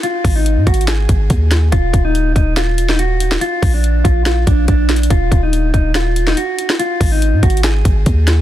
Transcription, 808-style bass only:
\new Staff \with { instrumentName = "808-style bass" } { \clef bass \time 4/4 \key ees \minor \tempo 4 = 142 r8 aes,,8. aes,16 aes,,4 aes,,8 ees,4 | ees,,8 ees,,4 ees,,2~ ees,,8 | r8 bes,,4 bes,,4 bes,,8 bes,,4 | ees,,8 ees,,4 ees,,4. r4 |
r8 aes,,8. aes,16 aes,,4 aes,,8 ees,4 | }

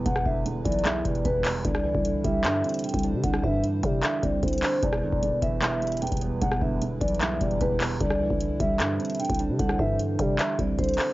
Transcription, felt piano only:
\new Staff \with { instrumentName = "Felt piano" } { \clef bass \time 4/4 \key c \lydian \tempo 4 = 151 <e, g b>8 d8 e,8 e8 e,8 g8 e,8 b8 | d8 e8 d8 g8 d8 c'8 d8 d'8 | d8 e8 d8 g8 d8 c'8 d8 d'8 | e,8 d8 e,8 e8 e,8 g8 e,8 b8 |
e,8 d8 e,8 e8 e,8 g8 e,8 b8 | d8 e8 d8 g8 d8 c'8 d8 d'8 | d8 e8 d8 g8 d8 c'8 d8 d'8 | }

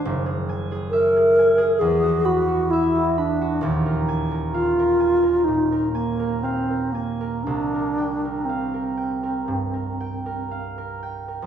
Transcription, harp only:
\new Staff \with { instrumentName = "Harp" } { \time 4/4 \key c \minor \tempo 4 = 64 <ges,, aes''>16 aes'16 aes''16 aes'16 fes''16 aes'16 aes''16 aes'16 e,16 fis'16 b''16 fis'16 e''16 fis'16 b''16 fis'16 | <ees,, ees,>16 bes'16 aes''16 bes'16 f''16 bes'16 aes''16 bes'16 bes,16 bes'16 aes''16 bes'16 f''16 bes'16 aes''16 bes'16 | c,16 bes'16 g''16 bes'16 f''16 bes'16 g''16 bes'16 g,16 bes'16 g''16 bes'16 f''16 bes'16 g''16 bes'16 | }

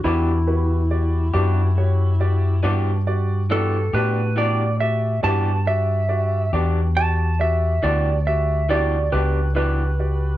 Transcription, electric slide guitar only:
\new Staff \with { instrumentName = "Electric slide guitar" } { \time 12/8 \key e \dorian \tempo 4. = 46 e'2. r4 a'8 b'8 d''8 e''8 | a''8 e''4 r8 a''8 e''8 d''8 e''8 d''8 b'8 b'4 | }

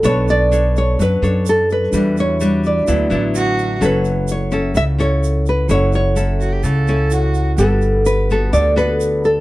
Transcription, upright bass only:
\new Staff \with { instrumentName = "Upright bass" } { \clef bass \time 4/4 \key fis \phrygian \tempo 4 = 127 b,,2 fis,8 fis,4. | e,2 d,8 a,,4. | fis,,2 cis,2 | fis,,2 cis,2 |
g,,2 d,2 | }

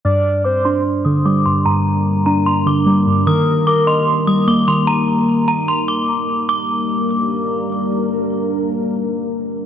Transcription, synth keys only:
\new Staff \with { instrumentName = "Synth keys" } { \clef bass \time 4/4 \key g \minor \tempo 4 = 149 g,4. d'4 d8 g8 g,8 | g,4. d'4 d8 g8 g,8 | ees4. ees''4 g8 bes8 ees8~ | ees2 r2 |
r1 | r1 | }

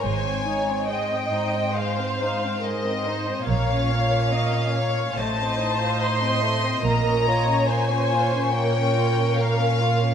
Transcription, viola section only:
\new Staff \with { instrumentName = "Viola section" } { \time 4/4 \key bes \dorian \tempo 4 = 71 c''8 des''8 ees''4 c''4 bes'8 c''8 | des''4 ees''8 des''8 c''2 | bes'8 des''8 c''4 bes'2 | }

